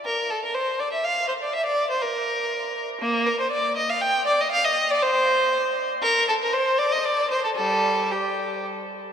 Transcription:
\new Staff \with { instrumentName = "Violin" } { \time 3/4 \key bes \lydian \tempo 4 = 120 bes'8 a'16 bes'16 c''8 d''16 e''16 f''8 c''16 d''16 | e''16 d''8 c''16 bes'4.~ bes'16 r16 | \key g \minor bes8 bes'16 c''16 d''8 ees''16 f''16 g''8 d''16 ees''16 | f''16 ees''8 d''16 c''4.~ c''16 r16 |
bes'8 a'16 bes'16 c''8 d''16 ees''16 d''8 c''16 a'16 | <g a'>4 g'4 r4 | }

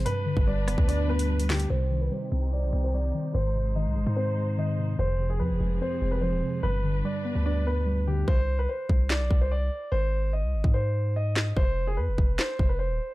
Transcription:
<<
  \new Staff \with { instrumentName = "Grand piano" } { \time 4/4 \key c \minor \tempo 4 = 146 b'4 d''4 d''8 b'4 g'8 | c''8. b'16 c''4 d''8. c''16 d''4 | c''4 ees''4 c''4 ees''4 | c''8. aes'16 b'4 c''8. b'16 c''4 |
b'4 d''4 d''8 b'4 g'8 | c''8. b'16 c''4 d''8. c''16 d''4 | c''4 ees''4 c''4 ees''4 | c''8. aes'16 b'4 c''8. b'16 c''4 | }
  \new Staff \with { instrumentName = "String section" } { \time 4/4 \key c \minor <g d' b'>1 | <c' ees' g'>1 | <aes ees' c''>1 | <f c' aes'>1 |
<g d' b'>1 | r1 | r1 | r1 | }
  \new Staff \with { instrumentName = "Synth keys" } { \clef bass \time 4/4 \key c \minor g,8 d8 g8 b8 d'8 b8 g8 d8 | c8 ees8 g8 c'8 c''8 c'8 g8 ees8 | aes,8 c8 ees8 aes8 c'8 aes8 ees8 c8 | f,8 c8 f8 aes8 c'8 aes8 f8 c8 |
g,8 d8 g8 b8 d'8 b8 g8 d8 | r1 | r1 | r1 | }
  \new Staff \with { instrumentName = "808-style bass" } { \clef bass \time 4/4 \key c \minor r8. g,,8. f,,16 d,2~ d,16 | c,4 r8 c,8. b,,16 c,4 r8 | aes,,4~ aes,,16 c,16 aes,,16 aes,2~ aes,16 | f,,4 f,16 f,,16 f,,8 r8 f,,8. ees,,16 r8 |
g,,4 r8. d,2~ d,16 | c,4 r8 c,8. b,,16 c,4 r8 | aes,,4~ aes,,16 c,16 aes,,16 aes,2~ aes,16 | f,,4 f,16 f,,16 f,,8 r8 f,,8. ees,,16 r8 | }
  \new DrumStaff \with { instrumentName = "Drums" } \drummode { \time 4/4 hh8. bd16 r8 <hh ss>16 bd16 hh8. hh16 r16 hh16 <hc hho ss sn>16 hh16 | r4 r4 r4 r4 | r4 r4 r4 r4 | r4 r4 r4 r4 |
r4 r4 r4 r4 | bd4 r8 bd8 <hc sn>8 bd8 r4 | r4 r8. bd16 r4 r8 <hc sn>8 | bd4 r8 bd8 <hc sn>8 bd8 r4 | }
>>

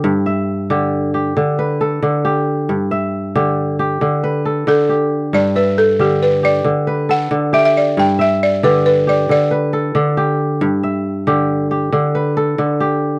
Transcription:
<<
  \new Staff \with { instrumentName = "Balafon" } { \time 12/8 \key g \major \tempo 4. = 91 r1. | r1 r8 a'4. | d''8 b'8 a'8 g'8 b'8 d''4. fis''4 e''32 e''32 e''16 d''8 | g''8 e''8 d''8 b'8 b'8 d''8 d''2~ d''8 r8 |
r1. | }
  \new Staff \with { instrumentName = "Kora" } { \time 12/8 \key g \major g'8 e''4 g'4 g'4 b'8 a'4 g'4~ | g'8 e''4 g'4 g'4 b'8 a'4 g'4~ | g'8 e''4 g'4 g'4 b'8 a'4 g'4~ | g'8 e''4 g'4 g'4 b'8 a'4 g'4~ |
g'8 e''4 g'4 g'4 b'8 a'4 g'4 | }
  \new Staff \with { instrumentName = "Kora" } { \clef bass \time 12/8 \key g \major g,4 r8 d4 r8 d4 r8 d4 r8 | g,4 r8 d4 r8 d4 r8 d4 r8 | g,4 r8 d4 r8 d4 r8 d4 r8 | g,4 r8 d4 r8 d4 r8 d4 r8 |
g,4 r8 d4 r8 d4 r8 d4 r8 | }
>>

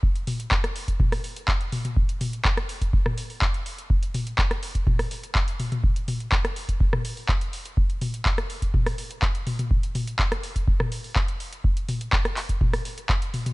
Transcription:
\new DrumStaff \with { instrumentName = "Drums" } \drummode { \time 4/4 \tempo 4 = 124 bd16 hh16 <hho toml>16 hh16 <hc bd>16 <hh ss>16 hho16 <hh bd>16 <bd toml>16 <hho ss>16 hho16 hh16 <hc bd>16 hh16 <hho toml>16 <hh toml>16 | bd16 hh16 <hho toml>16 hh16 <hc bd>16 <hh ss>16 hho16 <hh bd>16 bd16 <ss toml>16 hho16 hho16 <hc bd>16 hh16 hho16 hh16 | bd16 hh16 <hho toml>16 hh16 <hc bd>16 <hh ss>16 hho16 <hh bd>16 <bd toml>16 <hho ss>16 hho16 hh16 <hc bd>16 hh16 <hho toml>16 <hh toml>16 | bd16 hh16 <hho toml>16 hh16 <hc bd>16 <hh ss>16 hho16 <hh bd>16 bd16 <ss toml>16 hho16 hho16 <hc bd>16 hh16 hho16 hh16 |
bd16 hh16 <hho toml>16 hh16 <hc bd>16 <hh ss>16 hho16 <hh bd>16 <bd toml>16 <hho ss>16 hho16 hh16 <hc bd>16 hh16 <hho toml>16 <hh toml>16 | bd16 hh16 <hho toml>16 hh16 <hc bd>16 <hh ss>16 hho16 <hh bd>16 bd16 <ss toml>16 hho16 hho16 <hc bd>16 hh16 hho16 hh16 | bd16 hh16 <hho toml>16 hh16 <hc bd>16 <hh ss>16 <hc hho>16 <hh bd>16 <bd toml>16 <hho ss>16 hho16 hh16 <hc bd>16 hh16 <hho toml>16 <hh toml>16 | }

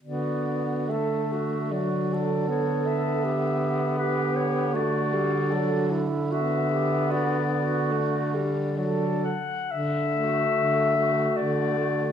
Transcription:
<<
  \new Staff \with { instrumentName = "Clarinet" } { \time 3/4 \key d \major \tempo 4 = 74 d''4 e''4 d''4 | cis''8 e''4. b'8 cis''8 | d''4. r8 e''4 | d''4 d''4 d''8 fis''8 |
e''2 d''4 | }
  \new Staff \with { instrumentName = "Alto saxophone" } { \time 3/4 \key d \major fis'4 a'8 fis'8 fis'8 a'8~ | a'4 g'4 g'4 | fis'4 a'8 e'8 fis'8 g'8 | fis'8 fis'4 r8 a'8 r8 |
r8 fis'4 fis'4 fis'8 | }
  \new Staff \with { instrumentName = "Tenor saxophone" } { \time 3/4 \key d \major b4 a4 fis4 | b2. | a8 g8 fis8 r8 b4~ | b4 a8 g8 fis8 r8 |
r8 a4 a4 a8 | }
  \new Staff \with { instrumentName = "Baritone saxophone" } { \clef bass \time 3/4 \key d \major d2.~ | d2. | d2.~ | d2~ d8 r8 |
d4 d4 d4 | }
>>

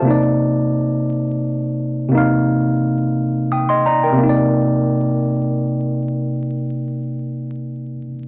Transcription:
\new Staff \with { instrumentName = "Tine electric piano" } { \time 6/8 \key c \minor \tempo 4. = 58 << { <c'' a''>16 r2 r8. | r2 <g'' ees'''>16 <ees'' c'''>16 <d'' bes''>16 <bes' g''>16~ | <bes' g''>16 r2 r8. | r2. | } \\ { <c bes ees' d''>2. | <c bes ees' f''>2. | <c bes ees' d''>2.~ | <c bes ees' d''>2. | } >> }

